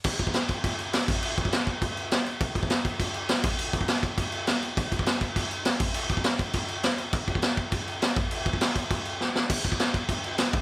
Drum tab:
CC |x-x-x-x-x-x-x-x-|x-x-x-x-x-x-x-x-|x-x-x-x-x-x-x-x-|x-x-x-x-x-x-x-x-|
SD |----o-------o---|----o-------o---|----o-------o---|----o-------o---|
BD |o-oo--o-o-----o-|--oo--o-o-------|o-oo--o-o-----o-|--oo--o-o-------|

CC |x-x-x-x-x-x-x-x-|x-x-x-x-x-x-x-x-|x-x-x-x-x-x-x-x-|x-x-x-x-x-x-----|
SD |----o-------o---|----o-------o---|----o-------o---|----o-------o-o-|
BD |o-oo--o-o-----o-|--oo--o-o-------|o-oo--o-o-----o-|--oo--o-o-------|

CC |x-x-x-x-x-x-x-x-|
SD |----o-------o---|
BD |o-oo--o-o-----o-|